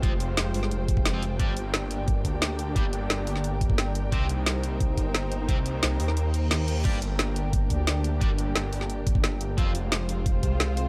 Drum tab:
CC |----------------|----------------|----------------|----------------|
HH |x-x-x-o-x-x-x-x-|x-x-x-x-x-x-x-x-|x-x-x-o-x-x-x-x-|x-x-x-x-x-x-x-x-|
SD |----o--o----o---|----o-------o---|----o--o----o---|----o-------o---|
BD |o---------oo----|o-------o-o-----|o---------oo----|o-------o-o-----|

CC |----------------|x---------------|----------------|----------------|
HH |x-x-x-o-x-x-x-x-|x-x-x-x-x-x-x-x-|x-x-x-o-x-x-x-x-|x-x-x-x-x-x-x-x-|
SD |----o--o----o---|----o-------o---|----o--o----o---|----o-------o---|
BD |o---------------|o-------o-o-----|o---------oo----|o-------o-o-----|